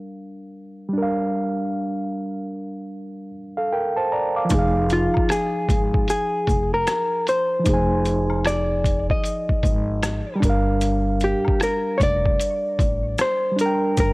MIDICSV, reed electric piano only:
0, 0, Header, 1, 2, 480
1, 0, Start_track
1, 0, Tempo, 789474
1, 819, Time_signature, 4, 2, 24, 8
1, 8592, End_track
2, 0, Start_track
2, 0, Title_t, "Reed electric piano"
2, 0, Program_c, 0, 4
2, 0, Control_c, 0, 64, 127
2, 0, Note_on_c, 0, 55, 66
2, 0, Note_on_c, 0, 62, 62
2, 0, Note_on_c, 0, 70, 63
2, 0, Note_on_c, 0, 77, 75
2, 532, Note_off_c, 0, 55, 0
2, 540, Note_on_c, 0, 55, 68
2, 549, Note_off_c, 0, 62, 0
2, 564, Note_off_c, 0, 70, 0
2, 567, Note_on_c, 0, 62, 59
2, 577, Note_off_c, 0, 77, 0
2, 594, Note_on_c, 0, 70, 63
2, 623, Note_on_c, 0, 77, 74
2, 2002, Note_off_c, 0, 70, 0
2, 2017, Note_off_c, 0, 77, 0
2, 2171, Note_on_c, 0, 77, 63
2, 2175, Note_on_c, 0, 69, 51
2, 2257, Note_off_c, 0, 77, 0
2, 2259, Note_off_c, 0, 69, 0
2, 2264, Note_on_c, 0, 79, 65
2, 2268, Note_on_c, 0, 70, 57
2, 2402, Note_off_c, 0, 79, 0
2, 2403, Note_off_c, 0, 70, 0
2, 2410, Note_on_c, 0, 81, 67
2, 2414, Note_on_c, 0, 72, 55
2, 2455, Note_off_c, 0, 55, 0
2, 2469, Note_off_c, 0, 62, 0
2, 2497, Note_off_c, 0, 81, 0
2, 2499, Note_off_c, 0, 72, 0
2, 2505, Note_on_c, 0, 82, 64
2, 2510, Note_on_c, 0, 74, 56
2, 2642, Note_off_c, 0, 82, 0
2, 2645, Note_off_c, 0, 74, 0
2, 2652, Note_on_c, 0, 86, 54
2, 2656, Note_on_c, 0, 77, 48
2, 2704, Note_on_c, 0, 53, 79
2, 2733, Note_on_c, 0, 63, 71
2, 2748, Control_c, 0, 64, 0
2, 2761, Note_on_c, 0, 68, 75
2, 2781, Note_off_c, 0, 77, 0
2, 2789, Note_on_c, 0, 77, 89
2, 2840, Control_c, 0, 64, 127
2, 2877, Note_off_c, 0, 86, 0
2, 4611, Note_off_c, 0, 53, 0
2, 4619, Note_on_c, 0, 53, 70
2, 4631, Note_off_c, 0, 63, 0
2, 4646, Note_off_c, 0, 68, 0
2, 4646, Note_on_c, 0, 63, 63
2, 4660, Note_off_c, 0, 77, 0
2, 4675, Note_on_c, 0, 68, 63
2, 4704, Note_on_c, 0, 80, 75
2, 6294, Note_off_c, 0, 53, 0
2, 6296, Note_on_c, 0, 55, 80
2, 6308, Note_off_c, 0, 63, 0
2, 6323, Note_off_c, 0, 68, 0
2, 6324, Note_on_c, 0, 62, 75
2, 6337, Note_off_c, 0, 80, 0
2, 6347, Control_c, 0, 64, 0
2, 6354, Note_on_c, 0, 70, 78
2, 6381, Note_on_c, 0, 77, 91
2, 6461, Control_c, 0, 64, 127
2, 8210, Note_off_c, 0, 55, 0
2, 8217, Note_on_c, 0, 55, 67
2, 8227, Note_off_c, 0, 62, 0
2, 8242, Note_off_c, 0, 70, 0
2, 8245, Note_on_c, 0, 62, 60
2, 8256, Note_off_c, 0, 77, 0
2, 8275, Note_on_c, 0, 70, 59
2, 8302, Note_on_c, 0, 79, 72
2, 8592, Note_off_c, 0, 55, 0
2, 8592, Note_off_c, 0, 62, 0
2, 8592, Note_off_c, 0, 70, 0
2, 8592, Note_off_c, 0, 79, 0
2, 8592, End_track
0, 0, End_of_file